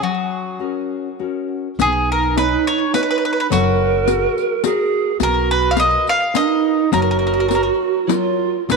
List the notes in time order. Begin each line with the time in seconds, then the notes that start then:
0.02 F#3 F#4
0.59 C#4 F#4 A#4
1.19 C#4 F#4 A#4
1.79 B1 B3 D#4 G#4, riq
2.12 A#4
2.36 B4 C#5 D#5, riq
2.67 C#5, riq
2.93 B4 C#5 D#5, riq
3.03 B4
3.11 B4
3.18 B4
3.25 B4
3.33 B4
3.40 B4
3.50 F#1 F#3 F#4 A#4, riq
4.06 F#4 G#4 A#4, riq
4.38 riq
4.64 F#4 G#4 A#4, riq
5.20 B1 B3 F#4 A#4, riq
5.51 B4
5.71 F5
5.77 A#4 B4 D#5, riq
6.07 F5, riq
6.34 D4 A#4 B4 D#5, riq
6.47 D#4
6.92 F#1 F#3 F#4 A#4, riq
7.02 A#4
7.11 A#4
7.19 A#4
7.27 A#4
7.34 A#4
7.40 A#4
7.49 F#4 A#4 C#5, riq
7.55 A#4
7.63 A#4
8.07 F#3 F4 A#4 C#5, riq
8.69 B1 B3 D#4 B4, riq